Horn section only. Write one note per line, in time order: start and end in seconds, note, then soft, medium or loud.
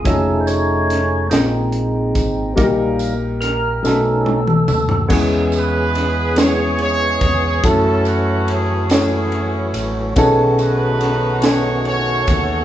5.57 6.78 G#4 medium
5.57 6.35 B4 loud
6.39 6.80 C#5 loud
6.82 7.62 G#4 medium
6.82 7.61 C#5 loud
7.66 8.88 C#4 medium
7.66 8.88 E4 medium
7.66 8.07 A4 loud
8.06 8.48 F#4 medium
8.49 8.91 G#4 medium
8.91 10.14 C#4 medium
8.91 10.14 E4 medium
8.91 9.83 G#4 medium
10.60 11.83 D#4 medium
10.60 11.83 F#4 medium
10.60 11.40 B4 medium
11.45 11.85 C#5 loud
11.87 12.65 F#4 medium
11.87 12.65 A4 medium
11.87 12.65 C#5 loud